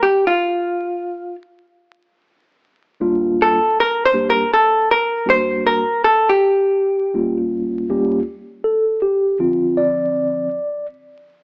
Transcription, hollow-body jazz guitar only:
0, 0, Header, 1, 2, 480
1, 0, Start_track
1, 0, Tempo, 750000
1, 1452, Time_signature, 4, 2, 24, 8
1, 7316, End_track
2, 0, Start_track
2, 0, Title_t, "Hollow-body jazz guitar"
2, 0, Program_c, 0, 26
2, 17, Note_on_c, 0, 67, 83
2, 170, Note_off_c, 0, 67, 0
2, 173, Note_on_c, 0, 65, 83
2, 867, Note_off_c, 0, 65, 0
2, 2189, Note_on_c, 0, 69, 90
2, 2428, Note_off_c, 0, 69, 0
2, 2433, Note_on_c, 0, 70, 98
2, 2587, Note_off_c, 0, 70, 0
2, 2595, Note_on_c, 0, 72, 104
2, 2748, Note_off_c, 0, 72, 0
2, 2751, Note_on_c, 0, 70, 97
2, 2899, Note_off_c, 0, 70, 0
2, 2902, Note_on_c, 0, 69, 91
2, 3142, Note_off_c, 0, 69, 0
2, 3144, Note_on_c, 0, 70, 94
2, 3385, Note_off_c, 0, 70, 0
2, 3391, Note_on_c, 0, 72, 108
2, 3623, Note_off_c, 0, 72, 0
2, 3626, Note_on_c, 0, 70, 90
2, 3865, Note_off_c, 0, 70, 0
2, 3868, Note_on_c, 0, 69, 85
2, 4024, Note_off_c, 0, 69, 0
2, 4028, Note_on_c, 0, 67, 79
2, 4714, Note_off_c, 0, 67, 0
2, 7316, End_track
0, 0, End_of_file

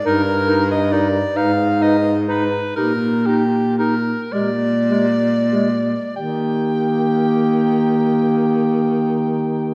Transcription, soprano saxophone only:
0, 0, Header, 1, 2, 480
1, 0, Start_track
1, 0, Key_signature, -3, "major"
1, 0, Tempo, 875912
1, 28, Time_signature, 6, 3, 24, 8
1, 990, Tempo, 950872
1, 1470, Tempo, 1020408
1, 1950, Tempo, 1121495
1, 2430, Tempo, 1257862
1, 2910, Tempo, 1212121
1, 4329, End_track
2, 0, Start_track
2, 0, Title_t, "Soprano saxophone"
2, 0, Program_c, 0, 64
2, 36, Note_on_c, 0, 70, 78
2, 376, Note_off_c, 0, 70, 0
2, 391, Note_on_c, 0, 75, 75
2, 503, Note_on_c, 0, 74, 79
2, 512, Note_off_c, 0, 75, 0
2, 746, Note_on_c, 0, 77, 83
2, 755, Note_off_c, 0, 74, 0
2, 997, Note_on_c, 0, 75, 75
2, 1005, Note_off_c, 0, 77, 0
2, 1166, Note_off_c, 0, 75, 0
2, 1235, Note_on_c, 0, 71, 77
2, 1466, Note_off_c, 0, 71, 0
2, 1469, Note_on_c, 0, 70, 71
2, 1707, Note_on_c, 0, 67, 67
2, 1714, Note_off_c, 0, 70, 0
2, 1948, Note_off_c, 0, 67, 0
2, 1950, Note_on_c, 0, 70, 68
2, 2183, Note_on_c, 0, 74, 69
2, 2189, Note_off_c, 0, 70, 0
2, 2908, Note_off_c, 0, 74, 0
2, 2910, Note_on_c, 0, 79, 56
2, 4329, Note_off_c, 0, 79, 0
2, 4329, End_track
0, 0, End_of_file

